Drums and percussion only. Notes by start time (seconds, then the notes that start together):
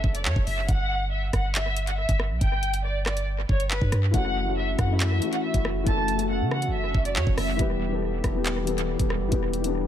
0.04 kick
0.15 closed hi-hat
0.25 clap
0.36 kick
0.47 open hi-hat
0.69 kick, closed hi-hat
1.33 kick, cross-stick, closed hi-hat
1.55 clap, closed hi-hat
1.76 closed hi-hat
1.87 closed hi-hat
2.09 kick, closed hi-hat
2.20 cross-stick
2.41 kick, closed hi-hat
2.63 closed hi-hat
2.74 closed hi-hat
3.06 cross-stick, clap
3.17 closed hi-hat
3.49 kick
3.60 closed hi-hat
3.71 clap
3.81 kick
3.92 cross-stick, closed hi-hat
4.14 kick, closed hi-hat
4.79 kick, cross-stick, closed hi-hat
5.00 clap, closed hi-hat
5.22 closed hi-hat
5.33 closed hi-hat
5.54 kick, closed hi-hat
5.65 cross-stick
5.87 kick, closed hi-hat
6.08 closed hi-hat
6.19 closed hi-hat
6.51 cross-stick
6.62 closed hi-hat
6.95 kick
7.05 closed hi-hat
7.16 clap
7.27 kick
7.38 cross-stick, open hi-hat
7.59 kick, closed hi-hat
8.24 kick, cross-stick, closed hi-hat
8.46 clap, closed hi-hat
8.67 closed hi-hat
8.78 closed hi-hat
8.99 kick, closed hi-hat
9.10 cross-stick
9.32 kick, closed hi-hat
9.53 closed hi-hat
9.64 closed hi-hat